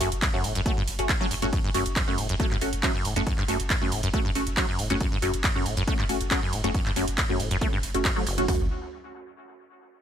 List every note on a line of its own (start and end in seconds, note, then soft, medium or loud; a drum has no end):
0.01 0.11 F#1 loud
0.01 0.10 F#2 medium
0.01 0.08 A3 medium
0.01 0.08 C#4 medium
0.01 0.08 F#4 loud
0.01 open hi-hat loud
0.12 0.22 F#1 medium
0.12 closed hi-hat medium
0.22 0.29 F#2 medium
0.22 kick loud
0.22 clap loud
0.22 closed hi-hat medium
0.22 ride medium
0.34 0.46 F#2 medium
0.34 0.41 A3 medium
0.34 0.41 C#4 medium
0.34 0.41 F#4 medium
0.44 0.55 F#1 medium
0.44 0.53 A2 medium
0.44 open hi-hat medium
0.55 0.66 F#1 medium
0.55 0.61 F#2 loud
0.55 closed hi-hat medium
0.66 0.78 A3 medium
0.66 0.72 A3 loud
0.66 0.78 C#4 medium
0.66 0.78 F#4 medium
0.66 kick loud
0.66 closed hi-hat medium
0.66 ride medium
0.77 0.83 G2 loud
0.88 0.98 F#1 loud
0.88 open hi-hat loud
0.99 1.09 F#1 medium
0.99 1.11 A3 medium
0.99 1.11 C#4 medium
0.99 1.11 F#4 loud
0.99 closed hi-hat medium
1.09 1.13 G2 medium
1.09 kick loud
1.09 clap loud
1.09 closed hi-hat medium
1.09 ride medium
1.21 1.26 F#3 loud
1.21 1.28 A3 loud
1.21 1.28 C#4 medium
1.21 1.28 F#4 loud
1.31 1.42 F#1 loud
1.31 1.35 F#2 medium
1.31 open hi-hat loud
1.42 1.53 F#1 medium
1.42 1.46 G2 loud
1.42 1.50 A3 medium
1.42 1.50 C#4 medium
1.42 1.50 F#4 loud
1.42 closed hi-hat medium
1.53 1.59 F#2 loud
1.53 kick loud
1.53 closed hi-hat medium
1.53 ride medium
1.64 1.70 G2 loud
1.74 1.85 F#1 loud
1.74 1.84 F#2 medium
1.74 1.82 A3 loud
1.74 1.82 C#4 medium
1.74 1.82 F#4 loud
1.74 open hi-hat loud
1.86 1.96 F#1 medium
1.86 closed hi-hat medium
1.96 2.02 F#2 medium
1.96 kick loud
1.96 clap loud
1.96 closed hi-hat medium
1.96 ride medium
2.08 2.20 F#2 medium
2.08 2.15 A3 medium
2.08 2.15 C#4 medium
2.08 2.15 F#4 medium
2.18 2.29 F#1 loud
2.18 2.27 A2 medium
2.18 open hi-hat medium
2.29 2.39 F#1 medium
2.29 2.35 F#2 loud
2.29 closed hi-hat medium
2.40 2.52 A3 medium
2.40 2.46 A3 loud
2.40 2.52 C#4 medium
2.40 2.52 F#4 medium
2.40 kick loud
2.40 closed hi-hat medium
2.40 ride medium
2.51 2.57 G2 loud
2.51 clap soft
2.61 2.72 F#1 loud
2.61 2.69 A3 medium
2.61 2.69 C#4 medium
2.61 2.69 F#4 loud
2.61 open hi-hat loud
2.73 2.83 F#1 medium
2.73 closed hi-hat medium
2.83 2.93 F#3 medium
2.83 2.91 A3 medium
2.83 2.91 C#4 medium
2.83 2.91 F#4 medium
2.83 kick loud
2.83 clap loud
2.83 closed hi-hat medium
2.83 ride medium
2.94 3.06 F#2 medium
3.05 3.16 F#1 loud
3.05 3.14 A2 medium
3.05 open hi-hat medium
3.16 3.26 F#1 medium
3.16 3.22 F#2 loud
3.16 3.24 A3 loud
3.16 3.24 C#4 medium
3.16 3.24 F#4 loud
3.16 closed hi-hat medium
3.27 3.33 F#2 loud
3.27 kick loud
3.27 closed hi-hat medium
3.27 ride medium
3.38 3.44 G2 loud
3.38 clap soft
3.48 3.59 F#1 loud
3.48 3.58 F#2 medium
3.48 3.56 A3 loud
3.48 3.56 C#4 medium
3.48 3.56 F#4 loud
3.48 open hi-hat loud
3.60 3.70 F#1 medium
3.60 closed hi-hat medium
3.70 3.76 F#2 medium
3.70 kick loud
3.70 clap loud
3.70 closed hi-hat medium
3.70 ride medium
3.81 3.93 F#2 medium
3.81 3.89 A3 medium
3.81 3.89 C#4 medium
3.81 3.89 F#4 medium
3.92 4.03 F#1 loud
3.92 4.01 A2 medium
3.92 open hi-hat medium
4.03 4.13 F#1 medium
4.03 4.09 F#2 loud
4.03 closed hi-hat medium
4.14 4.26 A3 medium
4.14 4.20 A3 loud
4.14 4.26 C#4 medium
4.14 4.26 F#4 medium
4.14 kick loud
4.14 closed hi-hat medium
4.14 ride medium
4.25 4.31 G2 loud
4.35 4.46 F#1 loud
4.35 4.43 A3 medium
4.35 4.43 C#4 medium
4.35 4.43 F#4 medium
4.35 open hi-hat loud
4.47 4.57 F#1 medium
4.47 closed hi-hat medium
4.57 4.66 F#3 medium
4.57 4.65 A3 medium
4.57 4.65 C#4 medium
4.57 4.65 F#4 loud
4.57 kick loud
4.57 clap loud
4.57 closed hi-hat medium
4.57 ride medium
4.68 4.80 F#2 medium
4.79 4.90 F#1 loud
4.79 4.88 A2 medium
4.79 open hi-hat medium
4.90 5.00 F#1 medium
4.90 4.96 F#2 loud
4.90 4.97 A3 loud
4.90 4.97 C#4 medium
4.90 4.97 F#4 loud
4.90 closed hi-hat medium
5.00 5.07 F#2 loud
5.00 kick loud
5.00 closed hi-hat medium
5.00 ride medium
5.12 5.18 G2 loud
5.22 5.33 F#1 loud
5.22 5.32 F#2 medium
5.22 5.30 A3 medium
5.22 5.30 C#4 medium
5.22 5.30 F#4 loud
5.22 open hi-hat loud
5.34 5.44 F#1 medium
5.34 closed hi-hat medium
5.44 5.50 F#2 medium
5.44 kick loud
5.44 clap loud
5.44 closed hi-hat medium
5.44 ride medium
5.55 5.67 F#2 medium
5.55 5.63 A3 medium
5.55 5.63 C#4 medium
5.55 5.63 F#4 medium
5.66 5.77 F#1 loud
5.66 5.75 A2 medium
5.66 open hi-hat medium
5.77 5.87 F#1 medium
5.77 5.83 F#2 loud
5.77 closed hi-hat medium
5.88 5.94 A3 loud
5.88 6.00 A3 medium
5.88 6.00 C#4 medium
5.88 6.00 F#4 medium
5.88 kick loud
5.88 closed hi-hat medium
5.88 ride medium
5.99 6.05 G2 loud
5.99 clap soft
6.09 6.20 F#1 loud
6.09 6.17 A3 medium
6.09 6.17 C#4 medium
6.09 6.17 F#4 medium
6.09 open hi-hat loud
6.21 6.31 F#1 medium
6.21 closed hi-hat medium
6.31 6.40 F#3 medium
6.31 6.39 A3 medium
6.31 6.39 C#4 medium
6.31 6.39 F#4 loud
6.31 kick loud
6.31 clap loud
6.31 closed hi-hat medium
6.31 ride medium
6.42 6.54 F#2 medium
6.53 6.64 F#1 loud
6.53 6.62 A2 medium
6.53 open hi-hat medium
6.64 6.74 F#1 medium
6.64 6.70 F#2 loud
6.64 6.71 A3 loud
6.64 6.71 C#4 medium
6.64 6.71 F#4 loud
6.64 closed hi-hat medium
6.74 6.81 F#2 loud
6.74 kick loud
6.74 closed hi-hat medium
6.74 ride medium
6.86 6.92 G2 loud
6.86 clap soft
6.96 7.07 F#1 loud
6.96 7.06 F#2 medium
6.96 7.04 A3 medium
6.96 7.04 C#4 medium
6.96 7.04 F#4 loud
6.96 open hi-hat loud
7.08 7.18 F#1 medium
7.08 closed hi-hat medium
7.18 7.24 F#2 medium
7.18 kick loud
7.18 clap loud
7.18 closed hi-hat medium
7.18 ride medium
7.29 7.41 F#2 medium
7.29 7.37 A3 medium
7.29 7.37 C#4 medium
7.29 7.37 F#4 medium
7.40 7.50 F#1 loud
7.40 7.49 A2 medium
7.40 open hi-hat medium
7.51 7.61 F#1 medium
7.51 7.57 F#2 loud
7.51 closed hi-hat medium
7.61 7.74 A3 medium
7.61 7.68 A3 loud
7.61 7.74 C#4 medium
7.61 7.74 F#4 medium
7.61 kick loud
7.61 closed hi-hat medium
7.61 ride medium
7.73 7.79 G2 loud
7.83 7.94 F#1 loud
7.83 open hi-hat loud
7.94 8.05 F#1 medium
7.94 8.06 A3 medium
7.94 8.06 C#4 medium
7.94 8.06 F#4 loud
7.94 closed hi-hat medium
8.05 8.11 F#2 medium
8.05 kick loud
8.05 clap loud
8.05 closed hi-hat medium
8.05 ride medium
8.16 8.25 F#3 medium
8.16 8.24 A3 loud
8.16 8.24 C#4 medium
8.16 8.24 F#4 loud
8.27 8.37 F#1 loud
8.27 8.39 F#1 medium
8.27 open hi-hat medium
8.38 8.48 F#1 medium
8.38 8.47 F#3 medium
8.38 8.45 A3 medium
8.38 8.45 C#4 medium
8.38 8.45 F#4 loud
8.38 closed hi-hat medium
8.48 8.69 F#1 loud
8.48 8.69 F#2 loud
8.48 8.65 A3 medium
8.48 8.65 C#4 medium
8.48 8.65 F#4 loud
8.48 kick loud
8.48 floor tom loud
8.48 open hi-hat medium